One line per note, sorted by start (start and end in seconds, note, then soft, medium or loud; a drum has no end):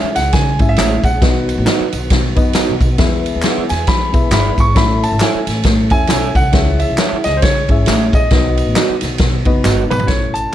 0.00 1.19 E3 medium
0.00 0.19 G#3 medium
0.00 1.21 G#3 medium
0.00 0.19 C#4 medium
0.00 1.19 C#4 medium
0.00 0.19 E4 medium
0.00 0.20 G#4 medium
0.00 1.21 G#4 medium
0.00 0.20 C#5 medium
0.00 0.16 E5 medium
0.00 muted upright bass stroke soft
0.15 0.30 C#2 medium
0.15 0.34 F#5 loud
0.15 snare soft
0.15 ride medium
0.15 tambourine medium
0.33 0.55 C#3 loud
0.33 0.70 G#5 loud
0.33 kick loud
0.33 snare loud
0.33 ride medium
0.33 tambourine medium
0.59 0.74 G#1 medium
0.59 1.11 G#3 medium
0.59 1.11 C#4 medium
0.59 1.11 E4 medium
0.59 1.12 G#4 medium
0.59 1.12 E5 medium
0.59 kick loud
0.59 ride medium
0.59 tambourine soft
0.69 1.06 E5 loud
0.77 1.00 A1 loud
0.77 0.96 E4 medium
0.77 0.96 G#4 medium
0.77 0.96 C#5 medium
0.77 0.96 E5 medium
0.77 snare loud
0.77 clap medium
0.77 ride medium
0.77 tambourine medium
1.04 1.18 A#1 loud
1.04 2.78 F#5 medium
1.04 kick loud
1.04 ride medium
1.04 tambourine medium
1.21 1.50 B1 loud
1.21 2.97 D#3 medium
1.21 2.98 F#3 medium
1.21 1.96 B3 medium
1.21 4.73 B3 medium
1.21 1.96 D#4 medium
1.21 2.97 F#4 medium
1.21 1.96 F#4 medium
1.21 1.96 B4 medium
1.21 1.97 D#5 medium
1.21 kick loud
1.21 snare loud
1.21 ride medium
1.21 tambourine soft
1.49 ride medium
1.49 tambourine soft
1.58 1.65 A1 loud
1.66 1.84 D#4 medium
1.66 1.84 F#4 loud
1.66 1.84 B4 loud
1.66 1.85 D#5 loud
1.66 snare loud
1.66 clap medium
1.66 ride medium
1.66 tambourine medium
1.80 muted upright bass stroke medium
1.93 2.07 B1 medium
1.93 ride medium
1.93 tambourine medium
2.10 2.32 B2 loud
2.10 kick loud
2.10 snare loud
2.10 ride medium
2.10 tambourine medium
2.36 2.51 F#2 medium
2.36 2.88 B3 medium
2.36 2.88 D#4 medium
2.36 2.88 F#4 medium
2.36 2.88 B4 medium
2.36 2.88 D#5 loud
2.36 kick loud
2.36 ride medium
2.36 tambourine soft
2.53 2.73 D#4 medium
2.53 2.73 F#4 medium
2.53 2.73 B4 medium
2.53 2.73 D#5 medium
2.53 muted upright bass stroke soft
2.53 snare loud
2.53 clap medium
2.53 ride medium
2.53 tambourine loud
2.69 2.80 B1 medium
2.80 2.95 B2 loud
2.80 kick loud
2.80 ride medium
2.80 tambourine medium
2.98 3.27 E2 loud
2.98 8.27 E3 medium
2.98 4.75 G#3 medium
2.98 3.73 B3 medium
2.98 3.73 E4 medium
2.98 3.73 G#4 medium
2.98 4.75 G#4 medium
2.98 3.74 B4 medium
2.98 3.74 E5 medium
2.98 kick loud
2.98 snare loud
2.98 ride medium
2.98 tambourine soft
3.26 ride medium
3.26 tambourine soft
3.35 3.42 D#2 medium
3.42 3.62 E4 medium
3.42 3.62 G#4 medium
3.42 3.62 B4 loud
3.42 3.62 E5 medium
3.42 snare loud
3.42 clap medium
3.42 ride medium
3.42 tambourine medium
3.58 muted upright bass stroke soft
3.69 3.85 E2 medium
3.69 3.86 G#5 medium
3.69 snare soft
3.69 ride medium
3.69 tambourine medium
3.87 4.09 E3 loud
3.87 4.31 B5 medium
3.87 kick loud
3.87 snare loud
3.87 ride medium
3.87 tambourine medium
4.12 4.28 B1 medium
4.12 4.64 B3 medium
4.12 4.65 E4 medium
4.12 4.65 G#4 medium
4.12 4.65 B4 medium
4.12 4.66 E5 medium
4.12 kick loud
4.12 ride medium
4.12 tambourine soft
4.31 4.53 G1 loud
4.31 4.50 E4 medium
4.31 4.50 G#4 loud
4.31 4.50 B4 loud
4.31 4.50 E5 loud
4.31 4.60 B5 loud
4.31 snare loud
4.31 clap loud
4.31 ride medium
4.31 tambourine loud
4.58 4.72 G#1 loud
4.58 4.76 C#6 loud
4.58 kick loud
4.58 ride medium
4.58 tambourine medium
4.75 5.05 A1 loud
4.75 6.51 A3 medium
4.75 5.50 C#4 medium
4.75 6.51 C#4 medium
4.75 5.50 E4 medium
4.75 6.51 A4 medium
4.75 5.50 A4 medium
4.75 5.50 C#5 medium
4.75 5.51 E5 medium
4.75 5.01 B5 loud
4.75 kick loud
4.75 snare loud
4.75 ride medium
4.75 tambourine soft
5.03 5.20 A5 medium
5.03 ride medium
5.03 tambourine soft
5.12 5.19 G#1 loud
5.20 5.38 E4 medium
5.20 5.39 A4 loud
5.20 5.39 C#5 loud
5.20 5.39 E5 loud
5.20 5.63 G#5 medium
5.20 snare loud
5.20 clap medium
5.20 ride medium
5.20 tambourine medium
5.34 muted upright bass stroke soft
5.47 5.61 A1 medium
5.47 snare soft
5.47 ride medium
5.47 tambourine medium
5.64 5.86 A2 loud
5.64 kick loud
5.64 snare loud
5.64 ride medium
5.64 tambourine medium
5.90 6.05 E2 medium
5.90 6.43 C#4 medium
5.90 6.43 E4 medium
5.90 6.43 A4 medium
5.90 6.43 C#5 medium
5.90 6.44 E5 medium
5.90 6.33 G#5 loud
5.90 kick medium
5.90 ride medium
5.90 tambourine soft
6.07 6.31 B1 loud
6.07 6.27 E4 medium
6.07 6.28 A4 medium
6.07 6.28 C#5 medium
6.07 snare loud
6.07 clap loud
6.07 ride medium
6.07 tambourine loud
6.11 6.28 E5 medium
6.35 6.50 C2 loud
6.35 6.77 F#5 loud
6.35 kick loud
6.35 ride medium
6.35 tambourine medium
6.52 6.82 C#2 loud
6.52 8.29 G#3 medium
6.52 7.27 C#4 medium
6.52 8.29 C#4 medium
6.52 7.27 E4 medium
6.52 8.29 G#4 medium
6.52 7.28 G#4 medium
6.52 7.28 C#5 medium
6.52 7.28 E5 medium
6.52 kick loud
6.52 snare loud
6.52 ride medium
6.79 7.21 E5 medium
6.79 ride medium
6.79 tambourine soft
6.90 6.96 B1 loud
6.98 7.16 E4 loud
6.98 7.16 G#4 medium
6.98 7.16 C#5 loud
6.98 7.16 E5 loud
6.98 snare loud
6.98 clap medium
6.98 ride medium
6.98 tambourine medium
7.12 muted upright bass stroke soft
7.24 7.39 C#2 medium
7.24 7.37 D#5 medium
7.24 snare soft
7.24 ride medium
7.24 tambourine medium
7.37 7.42 C5 medium
7.42 7.64 C#3 loud
7.42 8.16 C#5 loud
7.42 kick loud
7.42 snare loud
7.42 ride medium
7.42 tambourine medium
7.68 7.83 G#1 medium
7.68 8.20 C#4 medium
7.68 8.21 E4 medium
7.68 8.21 G#4 medium
7.68 8.21 C#5 medium
7.68 8.21 E5 medium
7.68 kick loud
7.68 ride medium
7.86 8.08 A1 loud
7.86 8.05 E4 medium
7.86 8.05 G#4 medium
7.86 8.05 C#5 medium
7.86 8.05 E5 medium
7.86 snare loud
7.86 clap loud
7.86 ride medium
7.86 tambourine medium
8.13 8.27 A#1 loud
8.13 9.61 D#5 medium
8.13 kick loud
8.13 ride medium
8.13 tambourine medium
8.31 8.60 B1 loud
8.31 10.08 D#3 medium
8.31 10.08 F#3 medium
8.31 9.06 B3 medium
8.31 10.08 B3 medium
8.31 9.06 D#4 medium
8.31 9.06 F#4 medium
8.31 10.08 F#4 medium
8.31 9.06 B4 medium
8.31 9.06 D#5 medium
8.31 kick loud
8.31 snare loud
8.31 ride medium
8.57 ride medium
8.57 tambourine soft
8.66 8.73 A1 medium
8.76 8.93 D#4 medium
8.76 8.94 F#4 loud
8.76 8.94 B4 loud
8.76 8.94 D#5 medium
8.76 snare loud
8.76 clap loud
8.76 ride medium
8.76 tambourine medium
8.89 muted upright bass stroke soft
9.01 9.16 B1 medium
9.01 snare soft
9.01 ride medium
9.01 tambourine medium
9.18 9.41 B2 medium
9.18 kick loud
9.18 snare loud
9.18 ride medium
9.18 tambourine medium
9.45 9.60 F#1 medium
9.45 9.97 B3 medium
9.45 9.98 D#4 medium
9.45 9.98 F#4 medium
9.45 9.98 B4 medium
9.45 9.98 D#5 medium
9.45 kick medium
9.45 ride medium
9.64 9.86 G1 loud
9.64 9.82 D#4 medium
9.64 9.82 F#4 medium
9.64 9.82 B4 medium
9.64 9.83 D#5 medium
9.64 snare medium
9.64 clap medium
9.64 tambourine medium
9.90 10.06 G#1 medium
9.90 10.09 B4 medium
9.90 mid tom medium
9.90 tambourine medium
10.00 floor tom medium
10.06 10.44 A1 medium
10.06 10.55 C#4 medium
10.06 10.55 E4 medium
10.06 10.55 A4 medium
10.06 10.33 C#5 medium
10.06 10.55 C#5 medium
10.06 kick loud
10.06 snare loud
10.06 closed hi-hat medium
10.06 tambourine soft
10.34 10.55 A5 loud
10.34 closed hi-hat medium
10.34 tambourine soft